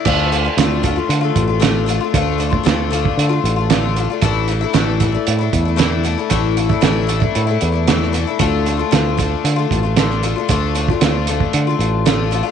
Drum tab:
CC |x---------------|----------------|----------------|----------------|
HH |--x-x-x-x-x-x-x-|x-x-x-x-x-x-x-x-|x-x-x-x-x-x-x-x-|x-x-x-x-x-x-x-x-|
SD |----o-------o---|----o-------o---|----o-------o---|----o-------oo--|
BD |o-----o---o-----|o--o---o--------|o-----o---o-----|o--o---o--------|

CC |----------------|----------------|
HH |x-x-x-x-x-x-x-x-|x-x-x-x-x-x-x-x-|
SD |----o-------oo--|----o-------o---|
BD |o-----o---o-----|o--o---o--------|